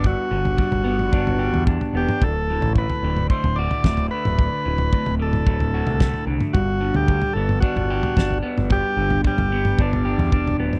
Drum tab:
SD |----------------|------------o---|------------o---|------------o---|
T2 |----o--o-------o|-------o-------o|-------o-------o|-------o-------o|
FT |o--o-o---o-o-o--|o--o-o---o-o-o--|o--o-o---o-o-o--|o--o-o---o-o-o--|
BD |o---o---o---o---|o---o---o---o---|o---o---o---o---|o---o---o---o---|

SD |----------------|
T2 |----o--o-------o|
FT |o--o-o---o-o-o--|
BD |o---o---o---o---|